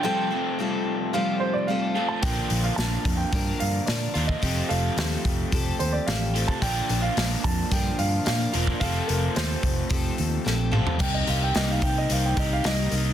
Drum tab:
CC |----------------|----------------|----------------|----------------|
HH |----------------|o-o-o-o-o-o-o-o-|o-o-o-o-o-o-o-o-|o-o-o-o-o-o-o-o-|
SD |----------------|----o-------o---|----o-------o---|----o-------o---|
T2 |----------------|----------------|----------------|----------------|
FT |----------------|----------------|----------------|----------------|
BD |----------------|o-----o-o------o|o-----o-o------o|o-----o-o------o|

CC |----------------|x---------------|
HH |o-o-o-o-o-o-----|--o-o-o-o-o-o-o-|
SD |----o-------o---|----o-------o---|
T2 |--------------o-|----------------|
FT |---------------o|----------------|
BD |o-----o-o-------|o-----o---o-----|